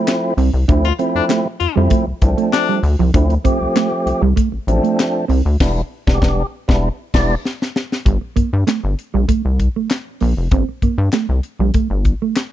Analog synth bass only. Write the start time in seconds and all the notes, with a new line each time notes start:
0.37 C2
0.54 C2
0.69 D2
1.15 F2
1.61 F2
1.77 F2
2.07 C2
2.22 C2
2.83 D2
2.99 C2
3.14 D2
3.61 C2
4.06 C2
4.22 C2
4.53 A1
4.67 A1
5.29 C2
5.46 D2
5.60 E1
6.07 E1
6.22 E1
6.69 E1
7.14 E1
8.06 G1
8.37 G2
8.53 G2
8.84 G1
9.14 A#1
9.28 C2
9.45 C2
10.22 A#1
10.37 F1
10.51 G1
10.82 G2
10.98 G2
11.29 C2
11.59 A#1
11.74 G1
11.90 G1